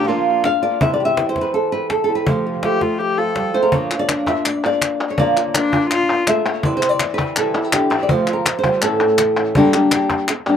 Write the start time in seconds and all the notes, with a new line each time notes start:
Already playing: A#3 D4 A#4
0.03 F3 A#3 D4 F4
0.08 A#2 F3 A#3 D4 F4
0.44 F5, muted nylon-string guitar stroke, cajon slap
0.62 A#3 D4 F4 D5, cajon slap
0.80 C3 E3 G3 C4 E4 E5, cajon bass
0.94 D5
1.00 G4
1.05 E5
1.17 E3 G3 C4 E4, cajon slap
1.29 C5
1.36 E3 G3 C4 E4, cajon bass, cajon slap
1.41 B4
1.54 A4, muted nylon-string guitar stroke
1.72 G3 C4 E4 B4, cajon slap
1.90 A4, cajon slap
2.04 A4
2.08 G3 C4 E4, cajon slap
2.15 B4
2.26 F2 C3 F3 A3 C4 F4 C5, cajon bass
2.46 F4
2.63 F3 A3 C4 F4 G4, cajon slap
2.81 F3 A3 C4 F4, cajon bass, cajon slap
2.99 G4, muted nylon-string guitar stroke
3.18 F3 A3 C4 F4 A4
3.36 G3, cajon slap
3.54 F3 A3 C4 F4 C5, cajon slap
3.63 A#4
3.72 A#2 F3 A#3 D4 F4 C#5, cajon bass
3.91 A#3 D4 F4, clap
3.99 D5
4.09 F3 A#3 D4 F4, cajon slap, clap
4.26 A#3 D4 F4 E5, cajon bass, cajon slap
4.45 D5, muted nylon-string guitar stroke, clap
4.64 A#3 D4 F4 D5
4.81 cajon slap, clap
5.01 clap
5.10 C#5
5.18 A#2 F3 A#3 D4 F4 D5, cajon bass
5.36 A#3 D4 F4, clap
5.54 F3 A#3 D4 F4, cajon slap, clap
5.73 A#3 D4 F4, cajon bass
5.91 F4, muted nylon-string guitar stroke, clap
6.09 A#3 D4 F4, cajon slap, clap
6.27 A3 E5, cajon slap, clap
6.46 A#3 C#5, clap
6.63 C3 E3 G3 C4 E4 D5, cajon bass
6.77 C5
6.82 G3 C4 E4, clap
6.89 D5
7.00 E3, muted nylon-string guitar stroke, cajon slap, clap
7.14 B4
7.18 G3 C4 E4, cajon bass, clap
7.36 C3 E3 G3 C4 E4 A4, clap
7.55 G3 C4 E4
7.64 G4
7.73 D3 G4, muted nylon-string guitar stroke, cajon slap, clap
7.90 E3 G3 C4 E4 D5, clap
8.03 D5
8.09 F2 C3 F3 A3 C4 F4 C5, cajon bass
8.27 F3 A3 C4 F4, clap
8.33 A#4
8.45 F3, muted nylon-string guitar stroke, cajon slap, clap
8.59 C5
8.64 F3 G3 A3 C4 F4, cajon bass
8.82 A2 E3 A3 C#4 E4 A4, clap
9.00 A3 C#4 E4, cajon slap, clap
9.18 E3, muted nylon-string guitar stroke, cajon slap, clap
9.37 A3 C#4 E4, cajon slap, clap
9.55 G2 D3 G3 A#3 D4 G4, cajon bass
9.73 G3 A#3 D4 G4, clap
9.91 G3 A#3 D4 G4, cajon slap, clap
10.10 cajon bass, cajon slap
10.28 muted nylon-string guitar stroke, clap
10.47 G3 A#3 D4 G4